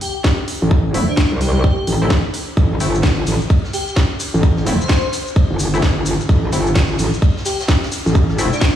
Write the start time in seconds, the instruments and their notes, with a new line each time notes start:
0.01 digital synth lead G4, open hi-hat
0.24 kick, snare
0.48 open hi-hat
0.62 wobble bass A1
0.71 kick
0.94 synth stab A3 C4 E4, open hi-hat
1.09 digital synth lead D4
1.17 kick, snare
1.32 wobble bass C2
1.41 digital synth lead G4, open hi-hat
1.64 kick
1.87 wobble bass A1, open hi-hat
2.02 synth stab A3 C4 E4
2.10 kick, snare
2.34 open hi-hat
2.57 wobble bass A1, kick, ride, shaker
2.71 ride
2.80 wobble bass G1, synth stab A3 C4 E4, open hi-hat, ride, shaker
2.95 shaker
3.03 wobble bass G1, kick, snare, open hi-hat
3.27 wobble bass A1, open hi-hat, ride, shaker
3.41 shaker
3.50 kick, ride, shaker
3.64 snare
3.73 digital synth lead G4, open hi-hat, ride, shaker
3.87 ride, shaker
3.96 kick, snare, ride, shaker
4.20 open hi-hat, ride, shaker
4.34 wobble bass A1, snare, shaker
4.43 kick, ride, shaker
4.57 snare
4.66 synth stab A3 C4 E4, open hi-hat, ride, shaker
4.81 digital synth lead C5, shaker
4.89 kick, snare, ride, shaker
5.12 snare, open hi-hat, ride, shaker
5.27 shaker
5.36 kick, ride, shaker
5.51 wobble bass G1
5.59 wobble bass G1, open hi-hat, ride, shaker
5.74 synth stab A3 C4 E4, ride, shaker
5.82 wobble bass G1, kick, snare, shaker
6.06 open hi-hat, ride, shaker
6.20 shaker
6.29 wobble bass A1, kick, ride, shaker
6.44 ride
6.52 wobble bass G1, synth stab A3 C4 E4, open hi-hat, ride, shaker
6.67 shaker
6.75 wobble bass G1, kick, snare, open hi-hat, shaker
6.98 wobble bass A1, open hi-hat, ride, shaker
7.13 shaker
7.22 kick, ride, shaker
7.37 snare
7.45 digital synth lead G4, snare, open hi-hat, shaker
7.60 snare, open hi-hat, shaker
7.68 kick, snare, open hi-hat, shaker
7.83 snare, open hi-hat
7.92 open hi-hat, ride, shaker
8.06 wobble bass A1, snare, shaker
8.15 kick, ride, shaker
8.29 snare
8.38 synth stab A3 C4 E4, open hi-hat, ride, shaker
8.53 digital synth lead D4, shaker
8.61 kick, snare, ride, shaker